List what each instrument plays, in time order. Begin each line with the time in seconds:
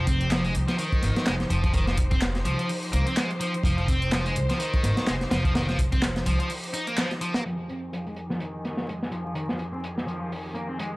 Already playing: upright bass F1, string section F3 D#4 G4 C5
0.07 overdriven electric guitar C4, kick, closed hi-hat
0.21 closed hi-hat
0.31 overdriven electric guitar F3, snare, clap, closed hi-hat
0.44 overdriven electric guitar G#3, closed hi-hat
0.55 upright bass C2, closed hi-hat
0.68 overdriven electric guitar F3, snare, closed hi-hat
0.78 overdriven electric guitar D#3, closed hi-hat
0.92 kick, closed hi-hat
1.02 upright bass G#1, snare, closed hi-hat
1.16 snare, closed hi-hat
1.26 upright bass F1, overdriven electric guitar G#3, snare, clap, closed hi-hat
1.40 snare, closed hi-hat
1.50 upright bass F1, overdriven electric guitar F3, closed hi-hat
1.64 overdriven electric guitar F3, kick, closed hi-hat
1.73 overdriven electric guitar D#3, kick, closed hi-hat
1.87 overdriven electric guitar F3, snare, closed hi-hat
1.97 kick, closed hi-hat
2.11 overdriven electric guitar C4, kick, closed hi-hat
2.21 snare, clap, closed hi-hat
2.35 snare, closed hi-hat
2.45 upright bass C2, overdriven electric guitar F3, closed hi-hat
2.59 overdriven electric guitar F3, closed hi-hat
2.69 closed hi-hat, open hi-hat
2.83 closed hi-hat
2.93 upright bass C2, overdriven electric guitar A#3, closed hi-hat
3.06 overdriven electric guitar C4, closed hi-hat
3.17 overdriven electric guitar G#3, snare, clap, closed hi-hat
3.31 closed hi-hat
3.40 overdriven electric guitar F3, closed hi-hat
3.54 closed hi-hat
3.63 upright bass F1, overdriven electric guitar F3, kick, closed hi-hat
3.78 overdriven electric guitar F3, closed hi-hat
3.88 overdriven electric guitar C4, kick, closed hi-hat
4.02 closed hi-hat
4.12 overdriven electric guitar F3, snare, clap, closed hi-hat
4.25 overdriven electric guitar G#3, closed hi-hat
4.36 upright bass C2, closed hi-hat
4.49 overdriven electric guitar F3, snare, closed hi-hat
4.60 overdriven electric guitar D#3, closed hi-hat
4.74 kick, closed hi-hat
4.83 upright bass G#1, snare, closed hi-hat
4.97 muted upright bass stroke, snare, closed hi-hat
5.07 upright bass F1, overdriven electric guitar G#3, snare, clap, closed hi-hat
5.21 snare, closed hi-hat
5.31 upright bass F1, overdriven electric guitar F3, snare, closed hi-hat
5.45 overdriven electric guitar F3, kick, closed hi-hat
5.55 overdriven electric guitar D#3, snare, closed hi-hat
5.69 overdriven electric guitar F3, snare, closed hi-hat
5.79 kick, closed hi-hat
5.92 overdriven electric guitar C4, kick, closed hi-hat
6.02 snare, clap, closed hi-hat
6.16 snare, closed hi-hat
6.26 upright bass C2, overdriven electric guitar F3, closed hi-hat
6.40 overdriven electric guitar F3, closed hi-hat
6.50 closed hi-hat, open hi-hat
6.63 closed hi-hat
6.74 overdriven electric guitar D#4, closed hi-hat
6.87 overdriven electric guitar A#3, closed hi-hat
6.97 overdriven electric guitar F3, snare, clap, closed hi-hat
7.11 snare, closed hi-hat
7.21 overdriven electric guitar F3, closed hi-hat
7.34 overdriven electric guitar A#3, snare, closed hi-hat
7.45 string section F2 D#3 G4 G#4, overdriven electric guitar F3, closed hi-hat
7.59 overdriven electric guitar F3
7.69 overdriven electric guitar C4, closed hi-hat
7.92 overdriven electric guitar F3, closed hi-hat
8.06 overdriven electric guitar G#3, closed hi-hat
8.16 closed hi-hat
8.30 overdriven electric guitar F3, snare
8.40 overdriven electric guitar D#3, closed hi-hat
8.65 snare, closed hi-hat
8.77 snare
8.88 overdriven electric guitar G#3, closed hi-hat
9.03 snare
9.12 overdriven electric guitar F3, closed hi-hat
9.25 overdriven electric guitar F3
9.35 overdriven electric guitar D#3, closed hi-hat
9.49 overdriven electric guitar F3, snare
9.59 closed hi-hat
9.73 overdriven electric guitar C4
9.84 closed hi-hat
9.98 snare
10.07 overdriven electric guitar F3, closed hi-hat
10.20 overdriven electric guitar F3
10.32 open hi-hat
10.55 overdriven electric guitar A#3, closed hi-hat
10.68 overdriven electric guitar C4
10.78 overdriven electric guitar G#3, closed hi-hat